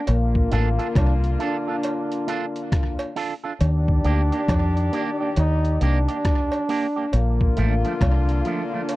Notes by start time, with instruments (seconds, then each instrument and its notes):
Already playing: trombone D4
0.07 fingered electric bass A#1, trombone section D3 A#3 F4, trombone A#3, closed hi-hat, cowbell
0.35 kick
0.51 fingered electric bass A1, trombone A#3, clean electric guitar D4 F4 A4, closed hi-hat
0.79 clean electric guitar D4 F4 A4, closed hi-hat
0.95 fingered electric bass C2, trombone D4, kick, cross-stick, closed hi-hat, cowbell
1.24 closed hi-hat
1.39 clean electric guitar D4 F4 A4, trombone D4, closed hi-hat
1.68 clean electric guitar D4 F4 A4
1.83 closed hi-hat, cowbell
2.12 closed hi-hat
2.27 clean electric guitar D4 F4 A4, closed hi-hat
2.56 closed hi-hat
2.72 kick, cross-stick, closed hi-hat
2.99 closed hi-hat, cowbell
3.16 clean electric guitar D4 F4 A4, open hi-hat
3.44 clean electric guitar D4 F4 A4
3.60 fingered electric bass D#2, trombone section D#3 G4 D5, trombone D4, closed hi-hat, cowbell
3.88 kick
4.04 fingered electric bass D2, clean electric guitar A#3 D4 G4, closed hi-hat
4.32 clean electric guitar A#3 D4 G4, closed hi-hat
4.48 fingered electric bass F2, kick, cross-stick, closed hi-hat, cowbell
4.77 closed hi-hat
4.92 clean electric guitar A#3 D4 G4, closed hi-hat
5.21 clean electric guitar A#3 D4 G4
5.36 fingered electric bass D#2, trombone D#4, closed hi-hat, cowbell
5.65 closed hi-hat
5.81 fingered electric bass C2, clean electric guitar A#3 D4 G4, trombone D4, closed hi-hat
6.08 clean electric guitar A#3 D4 G4, closed hi-hat
6.25 kick, cross-stick, closed hi-hat
6.52 closed hi-hat, cowbell
6.69 clean electric guitar A#3 D4 G4, open hi-hat
6.96 clean electric guitar A#3 D4 G4
7.13 fingered electric bass A#1, trombone section D3 A#3 F4, trombone A#3, closed hi-hat, cowbell
7.41 kick
7.56 fingered electric bass A1, clean electric guitar F3 A3 D4, trombone A#3, closed hi-hat
7.85 clean electric guitar F3 A3 D4, closed hi-hat
8.01 fingered electric bass C2, trombone D4, kick, cross-stick, closed hi-hat, cowbell
8.29 closed hi-hat
8.45 clean electric guitar F3 A3 D4, trombone D4, closed hi-hat
8.73 clean electric guitar F3 A3 D4
8.89 closed hi-hat, cowbell